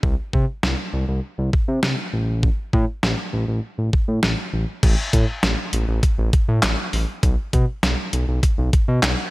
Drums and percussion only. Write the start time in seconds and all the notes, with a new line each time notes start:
0.03 kick
0.33 kick
0.63 snare
1.53 kick
1.83 snare
2.43 kick
2.73 kick
3.03 snare
3.93 kick
4.23 snare
4.83 kick, closed hi-hat, crash
5.13 kick, closed hi-hat
5.43 snare, closed hi-hat
5.73 closed hi-hat
6.03 kick, closed hi-hat
6.33 kick, closed hi-hat
6.63 snare, clap, closed hi-hat
6.93 open hi-hat
7.23 kick, closed hi-hat
7.53 kick, closed hi-hat
7.83 snare, closed hi-hat
8.13 closed hi-hat
8.43 kick, closed hi-hat
8.73 kick, closed hi-hat
9.03 snare, clap, closed hi-hat